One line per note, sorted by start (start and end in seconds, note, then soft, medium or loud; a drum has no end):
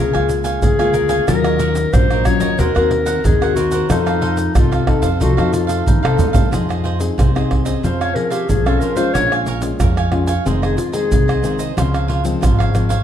0.00 0.12 C#2 loud
0.00 0.60 C#3 medium
0.00 0.36 G#4 medium
0.00 0.12 A#4 soft
0.00 0.13 C#5 soft
0.00 0.13 F5 medium
0.00 0.12 G#5 medium
0.13 0.56 C#2 medium
0.13 0.74 G#3 medium
0.13 0.74 A#3 medium
0.13 0.75 F4 medium
0.13 0.28 C#5 medium
0.13 0.28 F5 medium
0.13 0.29 G#5 medium
0.13 pandeiro soft
0.13 tamborim medium
0.13 shaker soft
0.28 muted cavaquinho stroke soft
0.28 pandeiro medium
0.28 shaker medium
0.44 0.78 C#5 medium
0.44 0.78 F5 medium
0.44 0.77 G#5 medium
0.44 pandeiro medium
0.44 shaker medium
0.62 1.19 D2 loud
0.62 1.25 C#3 medium
0.62 1.24 G#4 loud
0.62 pandeiro medium
0.62 shaker medium
0.62 surdo medium
0.79 1.23 G#3 medium
0.79 1.24 A#3 medium
0.79 1.24 F4 medium
0.79 0.93 C#5 medium
0.79 0.94 F5 medium
0.79 0.94 G#5 medium
0.79 pandeiro soft
0.79 tamborim medium
0.79 shaker soft
0.93 1.10 A#4 soft
0.93 1.10 C#5 soft
0.93 1.09 F5 soft
0.93 1.08 G#5 medium
0.93 pandeiro medium
0.93 shaker medium
1.09 1.27 C#5 medium
1.09 1.26 F5 medium
1.09 1.26 G#5 medium
1.09 pandeiro medium
1.09 shaker medium
1.27 1.84 D#2 loud
1.27 1.91 D#3 medium
1.27 1.88 F#3 medium
1.27 1.89 C#4 medium
1.27 1.89 F4 medium
1.27 1.43 F#4 medium
1.27 1.95 A#4 loud
1.27 1.43 A#4 soft
1.27 1.44 C#5 medium
1.27 1.43 D#5 medium
1.27 pandeiro medium
1.27 tamborim medium
1.27 shaker medium
1.27 surdo medium
1.44 1.59 A#4 medium
1.44 1.60 C#5 medium
1.44 1.60 D#5 medium
1.44 pandeiro soft
1.44 tamborim medium
1.44 shaker soft
1.59 1.74 F#4 medium
1.59 1.74 A#4 medium
1.59 1.75 C#5 medium
1.59 1.75 D#5 medium
1.59 pandeiro medium
1.59 shaker medium
1.75 muted cavaquinho stroke soft
1.75 pandeiro medium
1.75 shaker medium
1.93 2.36 A#1 loud
1.93 2.56 A#2 medium
1.93 2.22 F#3 medium
1.93 2.22 C#4 medium
1.93 2.22 F4 medium
1.93 2.09 F#4 soft
1.93 2.09 A#4 soft
1.93 2.27 C5 loud
1.93 2.10 C#5 medium
1.93 2.09 D#5 medium
1.93 pandeiro medium
1.93 tamborim medium
1.93 shaker medium
1.93 surdo loud
2.10 2.42 A#4 medium
2.10 2.41 C#5 medium
2.10 2.40 D#5 medium
2.10 pandeiro soft
2.10 tamborim medium
2.10 shaker soft
2.25 2.54 F#3 medium
2.25 2.54 C#4 medium
2.25 2.55 F4 medium
2.25 2.61 C#5 loud
2.25 pandeiro medium
2.25 tamborim medium
2.25 shaker medium
2.25 surdo medium
2.40 2.56 D#2 medium
2.40 2.58 A#4 medium
2.40 2.58 C#5 medium
2.40 2.57 D#5 medium
2.40 pandeiro medium
2.40 shaker medium
2.59 2.73 D#2 loud
2.59 3.22 D#3 medium
2.59 2.71 C4 medium
2.59 2.74 D#4 soft
2.59 2.71 F#4 medium
2.59 3.26 A#4 loud
2.59 2.75 A#4 soft
2.59 2.72 A#4 medium
2.59 2.75 C5 medium
2.59 2.74 F#5 medium
2.59 pandeiro medium
2.59 shaker medium
2.59 surdo medium
2.75 3.18 D#2 medium
2.75 3.37 C4 medium
2.75 3.37 F#4 medium
2.75 2.90 A#4 medium
2.75 3.37 A#4 medium
2.75 2.90 C5 medium
2.75 2.91 F#5 medium
2.75 pandeiro soft
2.75 tamborim medium
2.75 shaker soft
2.91 muted cavaquinho stroke soft
2.91 pandeiro medium
3.06 3.40 A#4 medium
3.06 3.40 C5 medium
3.06 3.39 F#5 medium
3.06 pandeiro medium
3.06 shaker medium
3.24 3.80 D#2 loud
3.24 3.87 D#3 medium
3.24 3.56 G#4 loud
3.24 pandeiro medium
3.24 shaker medium
3.24 surdo medium
3.42 3.86 C4 medium
3.42 3.86 F#4 medium
3.42 3.86 A#4 medium
3.42 3.56 A#4 medium
3.42 3.56 C5 medium
3.42 3.57 F#5 medium
3.42 pandeiro soft
3.42 tamborim medium
3.42 shaker soft
3.55 3.72 D#4 medium
3.55 3.89 F#4 medium
3.55 3.73 A#4 soft
3.55 3.72 C5 medium
3.55 3.71 F#5 medium
3.55 pandeiro medium
3.55 shaker medium
3.71 3.89 A#4 medium
3.71 3.89 C5 medium
3.71 3.88 F#5 medium
3.71 pandeiro medium
3.71 shaker medium
3.90 4.46 F2 medium
3.90 4.53 F3 medium
3.90 4.51 C4 medium
3.90 4.52 D#4 medium
3.90 4.06 D#4 medium
3.90 4.51 D#4 medium
3.90 4.51 A4 medium
3.90 4.06 A4 soft
3.90 4.06 C5 medium
3.90 4.05 F5 medium
3.90 pandeiro medium
3.90 tamborim medium
3.90 shaker medium
3.90 surdo medium
4.06 4.21 A4 medium
4.06 4.21 C5 medium
4.06 4.22 F5 medium
4.06 pandeiro soft
4.06 tamborim medium
4.06 shaker soft
4.21 4.36 D#4 medium
4.21 4.37 A4 medium
4.21 4.37 C5 medium
4.21 4.37 F5 medium
4.21 pandeiro medium
4.37 muted cavaquinho stroke soft
4.37 pandeiro medium
4.37 shaker medium
4.55 4.97 C2 medium
4.55 5.18 C3 medium
4.55 4.84 C4 medium
4.55 4.71 D#4 soft
4.55 4.84 D#4 medium
4.55 4.92 F4 medium
4.55 4.71 A4 medium
4.55 4.84 A4 medium
4.55 4.71 C5 medium
4.55 4.70 F5 medium
4.55 pandeiro medium
4.55 tamborim medium
4.55 shaker medium
4.55 surdo loud
4.72 5.03 A4 medium
4.72 5.02 C5 medium
4.72 5.01 F5 medium
4.72 pandeiro soft
4.72 tamborim medium
4.72 shaker soft
4.87 5.07 C4 medium
4.87 5.08 D#4 medium
4.87 5.08 A4 medium
4.87 pandeiro medium
4.87 tamborim medium
4.87 surdo medium
5.02 5.17 F2 medium
5.02 5.19 A4 medium
5.02 5.19 C5 medium
5.02 5.19 F5 medium
5.02 pandeiro medium
5.02 shaker medium
5.20 5.35 C2 loud
5.20 5.84 F3 medium
5.20 5.31 C4 medium
5.20 5.36 D#4 soft
5.20 5.32 D#4 medium
5.20 5.54 F#4 medium
5.20 5.36 A4 medium
5.20 5.32 A4 medium
5.20 5.36 C5 soft
5.20 5.36 F5 medium
5.20 pandeiro medium
5.20 shaker medium
5.20 surdo medium
5.37 5.80 F2 medium
5.37 5.98 C4 medium
5.37 5.99 D#4 medium
5.37 5.99 A4 medium
5.37 5.51 A4 medium
5.37 5.52 C5 medium
5.37 5.52 F5 medium
5.37 pandeiro soft
5.37 tamborim medium
5.37 shaker soft
5.52 5.86 F4 medium
5.52 muted cavaquinho stroke soft
5.52 pandeiro medium
5.52 shaker medium
5.67 6.02 A4 medium
5.67 6.01 C5 medium
5.67 6.00 F5 medium
5.67 pandeiro medium
5.67 shaker medium
5.86 6.49 C3 medium
5.86 6.01 D#3 medium
5.86 6.49 D#4 medium
5.86 pandeiro medium
5.86 shaker medium
5.86 surdo loud
6.03 6.18 C3 medium
6.03 6.48 C4 medium
6.03 6.48 D#4 medium
6.03 6.48 A4 medium
6.03 6.17 A4 medium
6.03 6.18 C5 medium
6.03 6.18 F5 medium
6.03 pandeiro soft
6.03 tamborim loud
6.03 shaker soft
6.17 6.34 D#4 soft
6.17 6.34 A4 soft
6.17 6.33 C5 soft
6.17 6.32 F5 medium
6.17 surdo medium
6.17 pandeiro medium
6.17 shaker medium
6.33 6.50 F2 medium
6.33 6.51 A4 medium
6.33 6.50 C5 medium
6.33 6.50 F5 medium
6.33 pandeiro medium
6.33 shaker medium
6.33 surdo medium
6.51 7.08 F2 loud
6.51 7.15 F3 medium
6.51 6.97 C4 soft
6.51 6.97 D#4 soft
6.51 6.67 F4 medium
6.51 6.68 G#4 soft
6.51 6.97 G#4 medium
6.51 6.68 C5 soft
6.51 6.68 D#5 soft
6.51 pandeiro medium
6.51 tamborim medium
6.51 shaker medium
6.51 surdo medium
6.69 6.83 G#4 medium
6.69 6.84 C5 medium
6.69 6.84 D#5 medium
6.69 pandeiro soft
6.69 tamborim medium
6.69 shaker soft
6.84 6.98 F4 medium
6.84 6.99 G#4 medium
6.84 6.99 C5 medium
6.84 7.00 D#5 medium
6.84 pandeiro medium
7.00 7.28 C4 medium
7.00 7.29 D#4 medium
7.00 7.29 G#4 medium
7.00 muted cavaquinho stroke soft
7.00 pandeiro medium
7.00 shaker medium
7.18 7.74 C2 medium
7.18 7.81 C3 medium
7.18 7.33 F4 soft
7.18 7.34 G#4 soft
7.18 7.34 C5 soft
7.18 7.34 D#5 soft
7.18 pandeiro medium
7.18 tamborim medium
7.18 shaker medium
7.18 surdo medium
7.35 7.63 C4 medium
7.35 7.63 D#4 medium
7.35 7.63 G#4 medium
7.35 7.66 G#4 medium
7.35 7.65 C5 medium
7.35 7.64 D#5 medium
7.35 pandeiro soft
7.35 tamborim medium
7.35 shaker soft
7.51 pandeiro medium
7.51 tamborim medium
7.51 surdo medium
7.65 8.11 C4 medium
7.65 8.11 C#4 medium
7.65 8.11 G#4 medium
7.65 7.82 G#4 medium
7.65 7.82 C5 medium
7.65 7.81 D#5 medium
7.65 pandeiro medium
7.65 shaker medium
7.83 8.11 F2 medium
7.83 8.46 F3 medium
7.83 7.99 F4 medium
7.83 8.02 C5 medium
7.83 8.00 C5 soft
7.83 8.00 C#5 soft
7.83 8.00 F5 soft
7.83 pandeiro medium
7.83 shaker medium
7.83 surdo medium
8.01 8.15 C5 medium
8.01 8.16 C#5 medium
8.01 8.16 F5 medium
8.01 pandeiro soft
8.01 tamborim medium
8.01 shaker soft
8.15 8.47 C4 medium
8.15 8.47 C#4 medium
8.15 8.47 G#4 medium
8.15 8.33 A#4 medium
8.15 muted cavaquinho stroke soft
8.15 pandeiro medium
8.30 8.50 G4 medium
8.30 8.64 C5 medium
8.30 8.64 C#5 medium
8.30 8.63 F5 medium
8.30 pandeiro medium
8.30 shaker medium
8.49 8.77 B1 loud
8.49 9.12 F3 medium
8.49 8.67 G#4 medium
8.49 pandeiro medium
8.49 shaker medium
8.49 surdo medium
8.66 8.94 C4 medium
8.66 8.94 C#4 medium
8.66 8.94 G#4 medium
8.66 8.81 A4 medium
8.66 8.81 C5 medium
8.66 8.82 C#5 medium
8.66 8.81 F5 medium
8.66 pandeiro soft
8.66 tamborim medium
8.66 shaker soft
8.79 8.97 F4 soft
8.79 8.98 A#4 medium
8.79 8.97 C5 soft
8.79 8.97 C#5 soft
8.79 pandeiro medium
8.79 shaker medium
8.84 8.95 F5 soft
8.96 9.58 G#3 medium
8.96 9.58 C#4 medium
8.96 9.58 F4 medium
8.96 9.13 C5 medium
8.96 9.14 C5 medium
8.96 9.13 C#5 medium
8.96 9.13 F5 medium
8.96 pandeiro medium
8.96 shaker medium
9.14 9.71 A#1 medium
9.14 9.77 A#2 medium
9.14 9.30 A#4 soft
9.14 9.34 C#5 medium
9.14 9.31 C#5 medium
9.14 9.31 F5 medium
9.14 9.31 G#5 medium
9.14 pandeiro medium
9.14 tamborim medium
9.14 shaker medium
9.14 surdo medium
9.32 9.47 C#5 medium
9.32 9.48 F5 medium
9.32 9.47 G#5 medium
9.32 pandeiro soft
9.32 tamborim medium
9.32 shaker soft
9.46 9.61 A#4 medium
9.46 9.62 C#5 medium
9.46 9.62 F5 medium
9.46 9.62 G#5 medium
9.46 pandeiro medium
9.46 shaker medium
9.62 10.07 G#3 medium
9.62 10.07 C#4 medium
9.62 10.08 F4 medium
9.62 muted cavaquinho stroke soft
9.62 pandeiro medium
9.62 shaker medium
9.80 10.43 F2 medium
9.80 10.36 F2 loud
9.80 9.96 A#4 soft
9.80 9.96 C#5 soft
9.80 9.97 F5 soft
9.80 9.96 G#5 medium
9.80 pandeiro medium
9.80 tamborim medium
9.80 shaker medium
9.80 surdo medium
9.97 10.29 C#5 medium
9.97 10.28 F5 medium
9.97 10.26 G#5 medium
9.97 pandeiro soft
9.97 tamborim medium
9.97 shaker soft
10.11 10.32 G#3 medium
10.11 10.32 C#4 medium
10.11 10.32 F4 medium
10.11 pandeiro medium
10.11 tamborim medium
10.27 10.45 C#5 medium
10.27 10.44 F5 medium
10.27 10.44 G#5 medium
10.27 pandeiro medium
10.27 shaker medium
10.45 10.74 F1 loud
10.45 11.08 F2 medium
10.45 10.77 D#3 medium
10.45 10.77 G#3 medium
10.45 10.77 C4 medium
10.45 10.61 F4 soft
10.45 10.61 G#4 medium
10.45 10.62 C5 medium
10.45 10.61 D#5 medium
10.45 pandeiro medium
10.45 shaker medium
10.45 surdo medium
10.62 10.78 G#4 medium
10.62 10.76 G#4 medium
10.62 10.77 C5 medium
10.62 10.77 D#5 medium
10.62 pandeiro soft
10.62 tamborim medium
10.62 shaker soft
10.77 10.95 F4 medium
10.77 muted cavaquinho stroke soft
10.77 pandeiro medium
10.77 shaker medium
10.92 11.38 D#3 medium
10.92 11.38 G#3 medium
10.92 11.39 C4 medium
10.92 11.60 G#4 medium
10.92 11.26 G#4 soft
10.92 11.26 C5 medium
10.92 11.25 D#5 medium
10.92 pandeiro medium
10.92 shaker medium
11.11 11.40 C2 medium
11.11 11.74 C3 medium
11.11 pandeiro medium
11.11 shaker medium
11.11 surdo medium
11.28 11.43 G#4 medium
11.28 11.44 C5 medium
11.28 11.43 D#5 medium
11.28 pandeiro soft
11.28 tamborim medium
11.28 shaker soft
11.43 11.72 D#3 medium
11.43 11.72 G#3 medium
11.43 11.72 C4 medium
11.43 11.59 F4 soft
11.43 11.59 G#4 soft
11.43 11.59 C5 soft
11.43 11.58 D#5 medium
11.43 pandeiro medium
11.43 shaker medium
11.59 11.76 G#4 medium
11.59 11.76 C5 medium
11.59 11.75 D#5 medium
11.59 pandeiro medium
11.59 shaker medium
11.77 12.33 C#2 loud
11.77 12.40 C#3 medium
11.77 12.21 F3 medium
11.77 12.21 G#3 medium
11.77 12.22 C4 medium
11.77 11.92 F4 soft
11.77 11.93 C5 medium
11.77 11.93 C#5 medium
11.77 11.93 F5 medium
11.77 pandeiro medium
11.77 tamborim medium
11.77 shaker medium
11.77 surdo medium
11.94 12.08 C5 medium
11.94 12.08 C#5 medium
11.94 12.09 F5 medium
11.94 pandeiro soft
11.94 tamborim medium
11.94 shaker soft
12.08 12.23 F4 medium
12.08 12.24 C5 medium
12.08 12.24 C#5 medium
12.08 12.24 F5 medium
12.08 pandeiro medium
12.24 12.70 F3 medium
12.24 12.70 G#3 medium
12.24 12.70 C4 medium
12.24 muted cavaquinho stroke soft
12.24 pandeiro medium
12.24 shaker medium
12.41 12.98 G#1 loud
12.41 13.04 G#2 medium
12.41 12.57 F4 soft
12.41 12.57 C5 soft
12.41 12.58 C#5 soft
12.41 12.57 F5 soft
12.41 pandeiro medium
12.41 tamborim medium
12.41 shaker medium
12.41 surdo loud
12.58 12.90 C5 soft
12.58 12.89 C#5 medium
12.58 12.88 F5 medium
12.58 pandeiro soft
12.58 tamborim medium
12.58 shaker soft
12.75 12.95 F3 medium
12.75 12.95 G#3 medium
12.75 12.95 C4 medium
12.75 pandeiro medium
12.75 tamborim medium
12.75 shaker medium
12.89 13.04 C5 medium
12.89 13.04 C#5 medium
12.89 13.04 F5 medium
12.89 pandeiro medium
12.89 shaker medium